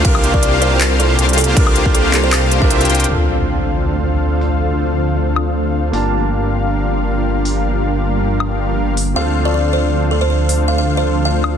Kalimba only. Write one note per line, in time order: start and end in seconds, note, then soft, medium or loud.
0.05 0.18 F5 loud
0.34 0.40 D5 medium
0.43 0.49 D5 medium
0.62 0.75 C5 medium
1.00 1.08 A4 medium
1.38 1.51 A4 loud
1.95 2.08 A4 medium
2.14 2.22 A4 medium
2.24 2.29 C5 medium
2.62 2.67 F5 medium
2.71 2.77 F5 medium
9.16 9.29 F5 medium
9.45 9.51 D5 medium
9.54 9.61 D5 medium
9.73 9.86 C5 medium
10.11 10.19 A4 medium
10.21 10.27 C5 medium
10.30 10.37 C5 medium
10.68 10.75 F5 medium
10.78 10.84 F5 medium
10.97 11.10 C5 medium
11.25 11.57 F5 medium